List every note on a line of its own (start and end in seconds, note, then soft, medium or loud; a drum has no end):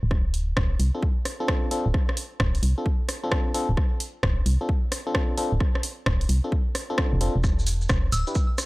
0.03 0.54 D1 loud
0.11 kick loud
0.11 cross-stick soft
0.34 open hi-hat medium
0.57 0.76 D1 loud
0.57 kick loud
0.57 cross-stick loud
0.80 0.91 C2 medium
0.80 open hi-hat medium
0.95 1.03 C4 medium
0.95 1.03 D4 medium
0.95 1.03 F4 medium
0.95 1.03 A4 medium
1.03 kick loud
1.25 cross-stick medium
1.25 open hi-hat loud
1.40 1.69 C4 medium
1.40 1.69 D4 medium
1.40 1.69 F4 medium
1.40 1.69 A4 medium
1.48 kick loud
1.48 cross-stick loud
1.71 1.86 C4 medium
1.71 1.86 D4 medium
1.71 1.86 F4 medium
1.71 1.86 A4 loud
1.71 open hi-hat medium
1.86 1.92 D1 medium
1.94 kick loud
1.94 cross-stick medium
2.09 cross-stick medium
2.17 open hi-hat loud
2.40 2.59 D1 loud
2.40 kick loud
2.40 cross-stick loud
2.55 open hi-hat medium
2.63 2.74 C2 medium
2.63 open hi-hat loud
2.78 2.86 C4 medium
2.78 2.86 D4 medium
2.78 2.86 F4 medium
2.78 2.86 A4 medium
2.86 kick loud
3.09 cross-stick medium
3.09 open hi-hat loud
3.23 3.52 C4 medium
3.23 3.52 D4 medium
3.23 3.52 F4 medium
3.23 3.52 A4 medium
3.31 kick loud
3.31 cross-stick loud
3.54 3.70 C4 medium
3.54 3.70 D4 medium
3.54 3.70 F4 medium
3.54 3.70 A4 loud
3.54 open hi-hat loud
3.69 3.75 D1 medium
3.77 kick loud
3.77 cross-stick medium
4.00 open hi-hat loud
4.23 4.42 D1 medium
4.23 kick loud
4.23 cross-stick loud
4.46 4.57 C2 medium
4.46 open hi-hat loud
4.61 4.70 C4 medium
4.61 4.70 D4 medium
4.61 4.70 F4 medium
4.61 4.70 A4 medium
4.69 kick loud
4.92 cross-stick medium
4.92 open hi-hat loud
5.07 5.36 C4 medium
5.07 5.36 D4 medium
5.07 5.36 F4 medium
5.07 5.36 A4 medium
5.15 kick loud
5.15 cross-stick loud
5.37 5.53 C4 medium
5.37 5.53 D4 medium
5.37 5.53 F4 medium
5.37 5.53 A4 loud
5.37 open hi-hat loud
5.52 5.59 D1 medium
5.60 kick loud
5.60 cross-stick medium
5.75 cross-stick medium
5.83 open hi-hat loud
6.06 6.26 D1 loud
6.06 kick loud
6.06 cross-stick loud
6.21 open hi-hat medium
6.29 6.41 C2 medium
6.29 open hi-hat loud
6.44 6.53 C4 medium
6.44 6.53 D4 medium
6.44 6.53 F4 medium
6.44 6.53 A4 medium
6.52 kick loud
6.75 cross-stick medium
6.75 open hi-hat loud
6.90 7.19 C4 medium
6.90 7.19 D4 medium
6.90 7.19 F4 medium
6.90 7.19 A4 medium
6.98 kick loud
6.98 cross-stick loud
7.13 7.29 F1 medium
7.21 7.36 C4 medium
7.21 7.36 D4 medium
7.21 7.36 F4 medium
7.21 7.36 A4 medium
7.21 open hi-hat loud
7.36 7.87 E1 loud
7.44 kick loud
7.44 cross-stick medium
7.44 maracas soft
7.59 maracas soft
7.67 open hi-hat loud
7.67 maracas medium
7.81 maracas soft
7.89 8.09 E1 loud
7.89 kick loud
7.89 cross-stick loud
7.89 maracas soft
8.12 8.24 D1 medium
8.12 8.32 E6 medium
8.12 open hi-hat loud
8.12 maracas medium
8.27 8.36 D4 medium
8.27 8.36 E4 medium
8.27 8.36 G4 medium
8.27 8.36 B4 medium
8.27 maracas soft
8.35 kick loud
8.35 maracas soft
8.58 cross-stick medium
8.58 open hi-hat loud
8.58 maracas medium